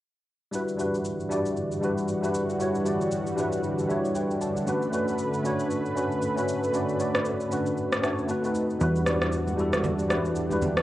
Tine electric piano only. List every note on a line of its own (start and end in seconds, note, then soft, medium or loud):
0.51 0.74 G3 medium
0.51 0.74 D4 medium
0.51 0.75 E4 medium
0.51 0.75 F#4 medium
0.51 0.76 B4 medium
0.77 1.21 G3 medium
0.77 1.22 D4 medium
0.77 1.22 E4 medium
0.77 1.22 F#4 medium
0.77 1.23 B4 medium
1.29 1.73 G3 medium
1.29 1.73 D4 medium
1.29 1.74 E4 medium
1.29 1.74 F#4 medium
1.29 1.75 D5 medium
1.80 2.13 G3 medium
1.80 2.14 D4 medium
1.80 2.14 E4 medium
1.80 2.15 F#4 medium
1.80 2.15 B4 medium
2.21 2.53 G3 medium
2.21 2.53 D4 medium
2.21 2.54 E4 medium
2.21 2.54 F#4 medium
2.21 2.54 B4 medium
2.58 2.81 G3 medium
2.58 2.81 D4 medium
2.58 2.82 E4 medium
2.58 2.82 F#4 medium
2.58 2.83 C#5 medium
2.84 3.28 G3 medium
2.84 3.29 D4 medium
2.84 3.29 E4 medium
2.84 3.30 F#4 medium
2.84 3.30 D5 medium
3.36 3.80 G3 medium
3.36 3.80 D4 medium
3.36 3.81 E4 medium
3.36 3.81 F#4 medium
3.36 3.82 B4 loud
3.87 4.20 G3 medium
3.87 4.21 D4 medium
3.87 4.21 E4 medium
3.87 4.22 F#4 medium
3.87 4.16 C#5 medium
3.87 4.13 E5 medium
4.15 4.40 B4 medium
4.15 4.39 G5 medium
4.41 4.55 D5 medium
4.41 4.65 A5 medium
4.56 4.81 F#5 medium
4.65 4.87 A3 medium
4.65 4.88 C#4 medium
4.65 4.88 D4 medium
4.65 4.89 F#4 medium
4.65 4.89 B4 medium
4.91 5.35 A3 medium
4.91 5.35 C#4 medium
4.91 5.36 D4 medium
4.91 5.36 F#4 medium
4.91 5.37 B4 medium
5.43 5.87 A3 medium
5.43 5.87 C#4 medium
5.43 5.88 D4 medium
5.43 5.88 F#4 medium
5.43 5.89 C#5 loud
5.94 6.27 A3 medium
5.94 6.28 C#4 medium
5.94 6.28 D4 medium
5.94 6.29 F#4 medium
5.94 6.29 B4 medium
6.35 6.66 A3 medium
6.35 6.67 C#4 medium
6.35 6.67 D4 medium
6.35 6.68 F#4 medium
6.35 6.68 B4 medium
6.72 6.94 A3 medium
6.72 6.95 C#4 medium
6.72 6.95 D4 medium
6.72 6.96 F#4 medium
6.72 6.96 D5 medium
6.98 7.42 A3 medium
6.98 7.43 D4 medium
6.98 7.43 F#4 medium
6.98 7.42 C#5 medium
6.98 7.44 D5 medium
7.49 7.93 A3 medium
7.49 7.94 C#4 medium
7.49 7.94 D4 medium
7.49 7.95 F#4 medium
7.49 7.95 B4 loud
8.01 8.26 A3 medium
8.01 8.28 C#4 medium
8.01 8.29 D4 medium
8.01 8.29 F#4 medium
8.01 8.30 C#5 medium
8.01 8.27 E5 medium
8.27 8.40 A3 medium
8.27 8.40 C4 medium
8.27 8.41 D#4 medium
8.27 8.41 F#4 medium
8.27 8.42 B4 medium
8.27 8.77 A5 medium
8.42 8.73 A3 medium
8.42 8.74 C4 medium
8.42 8.74 D#4 medium
8.42 8.75 F#4 medium
8.42 8.75 B4 medium
8.79 9.01 G3 medium
8.79 9.02 D4 medium
8.79 9.02 E4 medium
8.79 9.03 F#4 medium
8.79 9.03 B4 medium
9.05 9.49 G3 medium
9.05 9.49 D4 medium
9.05 9.50 E4 medium
9.05 9.50 F#4 medium
9.05 9.51 D5 medium
9.56 10.00 G3 medium
9.56 10.01 D4 medium
9.56 10.01 E4 medium
9.56 10.02 F#4 medium
9.60 10.02 A4 medium
10.08 10.41 G3 medium
10.08 10.41 D4 medium
10.08 10.42 E4 medium
10.08 10.42 F#4 medium
10.08 10.43 B4 loud
10.49 10.80 G3 medium
10.49 10.81 D4 medium
10.49 10.81 E4 medium
10.49 10.82 F#4 medium
10.53 10.82 B4 medium